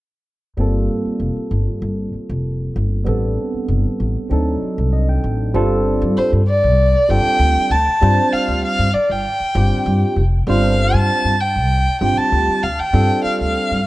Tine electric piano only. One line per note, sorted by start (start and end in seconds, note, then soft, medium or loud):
0.57 3.02 G3 medium
0.57 3.03 A#3 medium
0.57 3.03 C4 medium
0.57 3.03 F4 medium
0.57 3.04 A4 medium
3.04 4.27 G3 medium
3.04 4.27 B3 medium
3.04 4.28 C4 medium
3.04 4.29 D4 soft
3.09 4.29 A4 medium
4.29 5.51 F#3 medium
4.29 5.52 C4 medium
4.29 5.52 D4 medium
4.29 5.53 D#4 medium
4.29 5.53 A4 medium
4.93 5.08 D#5 medium
5.09 5.51 G5 medium
5.54 6.41 G3 medium
5.54 6.41 C4 medium
5.54 6.42 D4 medium
5.54 6.42 F4 medium
5.54 6.42 A4 medium
7.08 7.74 G3 medium
7.08 7.74 C4 medium
7.08 7.74 D4 medium
7.08 7.74 F4 medium
7.08 7.75 A4 medium
8.01 8.88 G3 medium
8.01 8.88 C4 medium
8.01 8.88 D4 medium
8.01 8.89 F4 medium
8.01 8.89 C5 medium
9.55 10.20 G3 medium
9.55 10.21 C4 medium
9.55 10.21 D4 medium
9.55 10.21 F4 medium
9.55 10.21 G4 medium
10.47 11.34 G3 medium
10.47 11.34 C4 medium
10.47 11.35 D4 medium
10.47 11.35 F4 medium
10.47 11.35 C5 medium
12.01 12.66 G3 medium
12.01 12.66 C4 medium
12.01 12.67 D4 medium
12.01 12.67 F4 medium
12.01 12.67 G4 medium
12.93 13.80 G3 medium
12.93 13.80 C4 medium
12.93 13.80 D4 medium
12.93 13.81 F4 medium
12.93 13.81 A4 medium